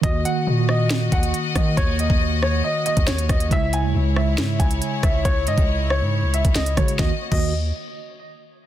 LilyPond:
<<
  \new Staff \with { instrumentName = "Grand piano" } { \time 4/4 \key ees \phrygian \tempo 4 = 138 ees''8 ges''8 r8 ees''4 ges''4 ees''8 | des''8 ees''4 des''8 ees''8 ees''8 des''8 ees''8 | fes''8 aes''8 r8 fes''4 aes''4 fes''8 | des''8 ees''4 des''4 fes''8 ees''8 des''8 |
ees''16 r8 ees''8 r2 r8. | }
  \new Staff \with { instrumentName = "String section" } { \time 4/4 \key ees \phrygian <bes ges' ees''>1~ | <bes ges' ees''>1 | <aes fes' des''>1~ | <aes fes' des''>1 |
<bes ges' ees''>8 r2. r8 | }
  \new Staff \with { instrumentName = "Tine electric piano" } { \time 4/4 \key ees \phrygian <ees bes ges'>1~ | <ees bes ges'>1 | <des aes fes'>1~ | <des aes fes'>2.~ <des aes fes'>8 <des aes ges'>8 |
<ees bes ges'>16 r8 <ees bes ges'>8 r2 r8. | }
  \new Staff \with { instrumentName = "808-style bass" } { \clef bass \time 4/4 \key ees \phrygian ees,8 r8 bes,4. ees,8 r8 ees8 | ees,8. ees,4~ ees,16 r8. ees,16 ees,8 ees,8 | des,8. ees,16 des,4 aes,8 des,8 r8 des,8 | des,8 aes,16 des,4 aes,8 des,8 des,16 des,8 des8 |
ees,16 r8 ees,4 r2 r16 | }
  \new DrumStaff \with { instrumentName = "Drums" } \drummode { \time 4/4 <hh bd>8 hh8 r8 ss8 sn8 <hh bd>16 hh16 hh8 <hh bd ss>8 | <hh bd>8 hh16 bd16 r8 ss8 r8 hh16 <hh bd>16 <hh sn>16 hh16 <hh bd ss>16 hh16 | <hh bd>8 hh8 r8 ss8 sn8 <hh bd>16 hh16 hh8 <hh bd ss>8 | <hh bd>8 hh16 <hh bd>16 r8 ss8 r8 hh16 <hh bd>16 <hh sn>16 hh16 <hh bd ss>16 hh16 |
<bd sn>8. <cymc bd>16 r4 r4 r4 | }
>>